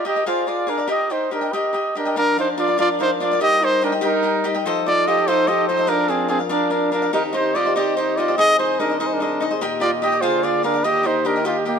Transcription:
0.05 cavaquinho G4 A#4 D#5 G5, trumpet G4 D#5
0.15 cavaquinho A#4 D#5 G5
0.26 trumpet F4 C5, cavaquinho G#4 A#4 D5 F5
0.47 trumpet F4 D5, cavaquinho G#4 A#4 D5 F5
0.67 trumpet D4 A#4, cavaquinho G#4 A#4 D5 F5
0.78 cavaquinho A#4 D5 F5
0.87 cavaquinho G4 A#4 D#5 G5, trumpet G4
0.91 trumpet D#5
1.10 trumpet D#4 C5, cavaquinho G4 A#4 D#5 G5
1.31 trumpet D4 A#4, cavaquinho G4 A#4 D#5 G5
1.41 cavaquinho A#4 D#5 G5
1.52 trumpet G4 D#5, cavaquinho G4 A#4 D#5 G5
1.73 cavaquinho G4 A#4 D#5 G5
1.95 trumpet D4 A#4, cavaquinho G4 A#4 D#5 G5
2.05 cavaquinho A#4 D#5 G5
2.14 french horn section F3 D4 A#4, cavaquinho D4 A#4 D5 F5, trumpet D4 A#4
2.38 cavaquinho D4 A#4 D5 F5, trumpet D#4 C5
2.57 cavaquinho D4 A#4 D5 F5, trumpet F4 D5
2.68 cavaquinho A#4 D5 F5
2.78 cavaquinho D4 A#4 D5 F5, trumpet F4 D5
2.99 cavaquinho D4 A#4 D5 F5, trumpet D#4 C5
3.20 cavaquinho D4 A#4 D5 F5, trumpet F4 D5
3.32 cavaquinho A#4 D5 F5
3.40 french horn section G3 D#4, cavaquinho G4 A#4 D#5 G5, trumpet G4 D#5
3.62 trumpet D#4 C5, cavaquinho G4 A#4 D#5 G5
3.81 trumpet D4 A#4, cavaquinho G4 A#4 D#5 G5
3.92 cavaquinho A#4 D#5 G5
4.01 cavaquinho G4 A#4 D#5 G5
4.05 trumpet D#4 A#4
4.23 cavaquinho G4 A#4 D#5 G5
4.44 cavaquinho G4 A#4 D#5 G5
4.55 cavaquinho A#4 D#5 G5
4.64 french horn section F3 D#4 A4, cavaquinho F4 A4 C5 D#5
4.87 cavaquinho F4 A4 C5 D#5, trumpet F4 D5
5.07 cavaquinho F4 A4 C5 D#5, trumpet G4 D#5
5.18 cavaquinho A4 C5 D#5
5.27 trumpet D#4 C5, cavaquinho F4 A4 C5 D#5
5.47 cavaquinho F4 A4 C5 D#5, trumpet G4 D#5
5.68 trumpet D#4 C5, cavaquinho F4 A4 C5 D#5
5.77 cavaquinho A4 C5 D#5
5.87 cavaquinho D4 A#4 D5 F5, french horn section D4 A#4, trumpet D4 A#4
6.08 trumpet C4 G#4, cavaquinho D4 A#4 D5 F5
6.28 trumpet C4 G#4, cavaquinho D4 A#4 D5 F5
6.39 cavaquinho A#4 D5 F5
6.49 cavaquinho D4 A#4 D5 F5, trumpet D4 A#4
6.70 cavaquinho D4 A#4 D5 F5, trumpet D4 A#4
6.92 cavaquinho D4 A#4 D5 F5, trumpet D4 A#4
7.02 cavaquinho A#4 D5 F5
7.12 french horn section D#3 C4 G4, cavaquinho D#4 G4 C5 D#5, trumpet D#4 A#4
7.33 cavaquinho D#4 G4 C5 D#5, trumpet D#4 C5
7.55 cavaquinho D#4 G4 C5 D#5, trumpet F4 D5
7.65 cavaquinho G4 C5 D#5
7.76 cavaquinho D#4 G4 C5 D#5, trumpet G4 D5
7.96 cavaquinho D#4 G4 C5 D#5, trumpet D#4 C5
8.17 cavaquinho D#4 G4 C5 D#5, trumpet F4 D5
8.28 cavaquinho G4 C5 D#5
8.38 french horn section C2 G#4, cavaquinho D#4 G#4 C5 D#5, trumpet G#4 D#5
8.59 trumpet D#4 C5, cavaquinho D#4 G#4 C5 D#5
8.79 trumpet D4 A#4, cavaquinho D#4 G#4 C5 D#5
8.90 cavaquinho G#4 C5 D#5
8.99 cavaquinho D#4 G#4 C5 D#5, trumpet D#4 A#4
9.07 trumpet D#4 C5
9.13 trumpet D4 A#4
9.20 cavaquinho D#4 G#4 C5 D#5
9.40 cavaquinho D#4 G#4 C5 D#5
9.50 cavaquinho G#4 C5 D#5
9.61 french horn section A#2 A#3 G4, cavaquinho G4 A#4 D#5 G5
9.80 trumpet F4 D5, cavaquinho G4 A#4 D#5 G5
10.02 cavaquinho G4 A#4 D#5 G5, trumpet G4 D#5
10.12 cavaquinho A#4 D#5 G5
10.21 french horn section D3 G#4, trumpet F4 C5, cavaquinho G#4 A#4 D5 F5
10.43 trumpet F4 D5, cavaquinho G#4 A#4 D5 F5
10.63 trumpet D4 A#4, cavaquinho G#4 A#4 D5 F5
10.74 cavaquinho A#4 D5 F5
10.83 french horn section D#3 G4, cavaquinho G4 A#4 D#5 G5, trumpet G4 D#5
11.03 trumpet D#4 C5, cavaquinho G4 A#4 D#5 G5
11.25 trumpet D4 A#4, cavaquinho G4 A#4 D#5 G5
11.36 cavaquinho A#4 D#5 G5
11.45 trumpet F4 G4, cavaquinho G4 A#4 D#5 G5
11.65 trumpet A#3 G4, cavaquinho G4 A#4 D#5 G5

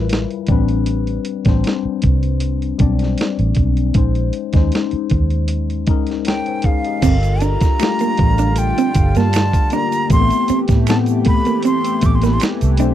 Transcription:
Already playing: fingered electric bass A1, tine electric piano G3 E4 F4 G4 A#4 B4
0.09 snare, closed hi-hat
0.31 closed hi-hat
0.47 fingered electric bass A1, tine electric piano G3 C4, kick, closed hi-hat
0.51 tine electric piano D4 B4
0.68 closed hi-hat
0.86 closed hi-hat
1.07 closed hi-hat
1.25 closed hi-hat
1.45 fingered electric bass A1, tine electric piano G3 C4 D4 C5, kick, snare, closed hi-hat
1.64 snare, closed hi-hat
1.85 muted fingered electric bass stroke
2.02 fingered electric bass C2, kick, closed hi-hat
2.23 closed hi-hat
2.40 closed hi-hat
2.62 closed hi-hat
2.78 fingered electric bass B1, tine electric piano G3 C4 D4 D5, kick, closed hi-hat
2.99 snare, closed hi-hat
3.18 snare, closed hi-hat
3.39 fingered electric bass A1, closed hi-hat
3.55 fingered electric bass B1, kick, closed hi-hat
3.77 closed hi-hat
3.94 fingered electric bass A#1, tine electric piano G#3 C#4 D#4 C5, kick, closed hi-hat
4.15 closed hi-hat
4.33 closed hi-hat
4.53 fingered electric bass D#2, tine electric piano G#3 C#4 D#4, kick, snare, closed hi-hat
4.57 tine electric piano C5
4.72 snare, closed hi-hat
4.91 muted fingered electric bass stroke, closed hi-hat
5.10 fingered electric bass D#2, kick, closed hi-hat
5.30 closed hi-hat
5.48 closed hi-hat
5.70 closed hi-hat
5.87 fingered electric bass C#2, tine electric piano G#3 C#4 D#4 A#4, kick, closed hi-hat
6.07 snare, closed hi-hat
6.25 tine electric piano C#5 A#5, flute G5, snare, closed hi-hat
6.46 tine electric piano C5 G#5, closed hi-hat
6.62 tine electric piano G#4 F5, flute F5, kick, closed hi-hat
6.84 tine electric piano G4 D#5, closed hi-hat
7.02 fingered electric bass G1, analog synth pad D3 G3 F4, hollow-body jazz guitar C4, tine electric piano F4 G4 A4 A#4, kick, closed hi-hat, crash, shaker
7.23 closed hi-hat, shaker
7.41 hollow-body jazz guitar D4, flute A#5, closed hi-hat, shaker
7.61 kick, snare, closed hi-hat, shaker
7.79 tine electric piano A3 F4 G4, finger snap, snare, closed hi-hat, shaker
7.99 hollow-body jazz guitar A#3, closed hi-hat, shaker
8.17 fingered electric bass A1, muted hollow-body jazz guitar stroke, kick, closed hi-hat
8.38 hollow-body jazz guitar D4, closed hi-hat, shaker
8.56 flute G5, closed hi-hat, shaker
8.78 hollow-body jazz guitar C4, closed hi-hat, shaker
8.94 fingered electric bass G1, muted hollow-body jazz guitar stroke, kick, closed hi-hat, shaker
9.15 fingered electric bass G2, hollow-body jazz guitar A#3, flute A5, snare, closed hi-hat, shaker
9.33 finger snap, snare, closed hi-hat, shaker
9.53 kick, closed hi-hat, shaker
9.70 tine electric piano A#3 F4 G4, hollow-body jazz guitar D4, flute A#5, closed hi-hat, shaker
9.75 tine electric piano A#4
9.92 closed hi-hat, shaker
10.10 fingered electric bass A1, analog synth pad E3 A3 G4, tine electric piano A3 C4 G4 A#4, flute C6, kick, closed hi-hat, shaker
10.20 tine electric piano B3
10.30 closed hi-hat, shaker
10.48 hollow-body jazz guitar C4, muted fingered electric bass stroke, closed hi-hat, shaker
10.68 fingered electric bass A2, kick, snare, closed hi-hat, shaker
10.87 tine electric piano A3 B3 C4 G4, flute A5, finger snap, muted hollow-body jazz guitar stroke, snare, closed hi-hat, shaker
11.06 closed hi-hat, shaker
11.25 hollow-body jazz guitar A3, flute B5, kick, closed hi-hat
11.45 hollow-body jazz guitar A#3, closed hi-hat, shaker
11.63 hollow-body jazz guitar C4, flute C6, closed hi-hat, shaker
11.84 closed hi-hat, shaker
12.01 fingered electric bass A1, muted hollow-body jazz guitar stroke, kick, closed hi-hat, shaker
12.06 flute D6
12.15 flute C6
12.22 hollow-body jazz guitar A#3, flute B5, snare, closed hi-hat, shaker
12.33 flute C6
12.40 finger snap, muted hollow-body jazz guitar stroke, snare, closed hi-hat, shaker
12.61 fingered electric bass C2, closed hi-hat, shaker
12.77 fingered electric bass B1, tine electric piano A3 C4 G4, hollow-body jazz guitar D4, closed hi-hat, shaker
12.82 tine electric piano C5

